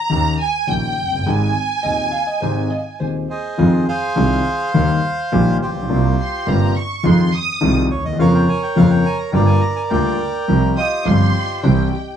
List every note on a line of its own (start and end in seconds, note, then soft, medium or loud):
0.00 0.36 A#5 medium
0.09 0.35 D#2 medium
0.09 0.36 D#2 medium
0.09 0.35 D#3 medium
0.09 0.35 A#3 medium
0.09 0.35 C#4 medium
0.09 0.35 G4 medium
0.40 0.69 G#5 medium
0.67 0.92 A#1 medium
0.67 0.93 A#1 medium
0.67 0.92 A#2 soft
0.67 0.92 D#3 soft
0.67 0.92 A#3 soft
0.67 0.92 C#4 soft
0.67 0.93 G4 soft
0.67 1.27 G5 medium
0.98 1.26 F#1 medium
1.04 1.12 F1 soft
1.12 1.19 F#1 medium
1.19 1.26 G1 medium
1.26 1.51 G#1 medium
1.26 1.51 G#2 medium
1.26 1.51 D#3 medium
1.26 1.51 G#3 medium
1.26 1.51 C4 medium
1.26 1.51 G4 medium
1.26 3.01 G#5 medium
1.83 2.09 D#1 soft
1.83 2.09 D#2 soft
1.83 2.09 D#3 soft
1.83 2.09 G#3 soft
1.83 2.09 C4 soft
1.83 2.09 G4 soft
1.83 2.11 D#5 medium
2.12 2.27 F5 medium
2.27 2.42 D#5 medium
2.42 2.67 G#1 medium
2.42 2.67 G#2 medium
2.42 2.67 D#3 medium
2.42 2.67 G#3 medium
2.42 2.67 C4 medium
2.42 2.67 G4 medium
2.42 2.72 C5 medium
2.70 2.78 D#5 medium
3.00 3.25 D#1 medium
3.00 3.25 D#2 medium
3.00 3.25 D#3 soft
3.00 3.25 G#3 soft
3.00 3.25 C4 soft
3.00 3.25 G4 soft
3.00 3.54 C5 medium
3.30 3.87 G#4 medium
3.30 3.87 C5 medium
3.30 3.84 D#5 medium
3.58 3.83 F2 medium
3.58 3.82 D#3 medium
3.58 3.83 F3 medium
3.58 3.83 G#3 medium
3.58 3.83 C4 medium
3.58 3.83 F4 medium
3.88 4.71 G#4 medium
3.88 5.57 C5 medium
3.88 5.57 F5 loud
4.16 4.40 C2 medium
4.16 4.41 C2 loud
4.16 4.41 C3 medium
4.16 4.40 D#3 medium
4.16 4.41 G#3 medium
4.16 4.41 C4 medium
4.16 4.40 F4 medium
4.74 4.98 D#2 loud
4.74 4.99 D#2 medium
4.74 4.99 D#3 medium
4.74 4.99 G3 medium
4.74 4.99 A#3 medium
4.74 4.99 G4 medium
5.32 5.56 A#1 loud
5.32 5.57 A#1 medium
5.32 5.56 A#2 loud
5.32 5.56 D#3 medium
5.32 5.56 G3 medium
5.32 5.56 A#3 medium
5.32 5.56 G4 medium
5.62 5.90 A#1 medium
5.62 6.73 F4 medium
5.62 6.73 G4 medium
5.62 6.73 C5 medium
5.68 5.75 A1 medium
5.76 5.83 A#1 medium
5.82 5.89 B1 medium
5.89 6.14 C2 medium
5.89 6.14 C2 loud
5.89 6.14 C3 loud
5.89 6.14 G3 medium
5.89 6.14 A#3 medium
5.89 6.14 F4 medium
6.19 6.46 C6 medium
6.47 6.71 G1 medium
6.47 6.72 G1 medium
6.47 6.71 G2 medium
6.47 6.71 C3 medium
6.47 6.71 G3 medium
6.47 6.71 A#3 medium
6.47 6.71 F4 medium
6.47 6.76 A#5 medium
6.75 7.04 C#6 medium
7.03 7.28 F2 loud
7.03 7.29 F2 loud
7.03 7.28 D#3 medium
7.03 7.28 F3 loud
7.03 7.28 G#3 medium
7.03 7.28 C4 medium
7.03 7.28 F4 medium
7.03 7.33 C6 loud
7.33 7.76 D#6 loud
7.61 7.86 C2 medium
7.61 7.86 C2 loud
7.61 7.86 C3 loud
7.61 7.85 D#3 medium
7.61 7.86 G#3 medium
7.61 7.86 C4 medium
7.61 7.86 F4 medium
7.91 8.19 D#2 medium
7.91 8.04 C#5 medium
7.98 8.05 D2 medium
8.05 8.13 D#2 medium
8.05 8.18 D#5 loud
8.13 8.20 E2 medium
8.19 8.43 F2 medium
8.19 8.44 F2 medium
8.19 8.43 C#3 medium
8.19 8.43 F3 medium
8.19 8.44 A#3 medium
8.19 8.44 F4 medium
8.19 9.31 A#4 medium
8.19 9.31 C#5 medium
8.19 8.34 F5 loud
8.35 8.48 G5 medium
8.49 8.62 G#5 loud
8.63 8.77 G5 loud
8.76 9.01 F2 medium
8.76 9.00 C#3 medium
8.76 9.00 F3 medium
8.76 9.01 A#3 medium
8.76 9.01 F4 medium
8.76 8.92 F5 loud
8.91 9.06 G5 loud
9.06 9.19 G#5 loud
9.18 9.32 A#5 medium
9.32 9.58 G1 loud
9.32 9.58 G2 loud
9.32 9.57 D3 medium
9.32 9.58 G3 medium
9.32 9.58 A#3 medium
9.32 9.58 F4 medium
9.32 9.91 A#4 medium
9.32 9.91 D5 medium
9.32 9.48 G5 loud
9.46 9.62 G#5 loud
9.61 9.75 A#5 medium
9.76 9.83 G#5 medium
9.90 10.15 D2 loud
9.90 10.16 D2 medium
9.90 10.15 D3 loud
9.90 10.15 G3 medium
9.90 10.15 A#3 medium
9.90 10.15 F4 medium
9.90 10.74 A#4 medium
9.90 10.46 D5 medium
9.90 10.80 G5 loud
10.48 10.73 C2 medium
10.48 10.73 C3 medium
10.48 10.73 F3 medium
10.48 10.73 G3 medium
10.48 10.73 C4 medium
10.48 10.73 G4 medium
10.76 11.60 F4 medium
10.76 11.89 G4 medium
10.76 11.88 C5 medium
10.76 11.63 D#5 loud
10.76 11.04 D#6 medium
11.05 11.30 G1 medium
11.05 11.30 G1 loud
11.05 11.30 G2 medium
11.05 11.30 F3 medium
11.05 11.30 G3 medium
11.05 11.30 C4 medium
11.05 11.30 G4 medium
11.05 11.63 C6 loud
11.63 11.88 C2 medium
11.63 11.88 C2 loud
11.63 11.88 C3 medium
11.63 11.88 E3 medium
11.63 11.88 G3 medium
11.63 11.88 C4 medium
11.63 11.88 G4 medium
11.63 11.71 C5 medium
11.63 12.17 G5 medium
11.93 12.17 G4 medium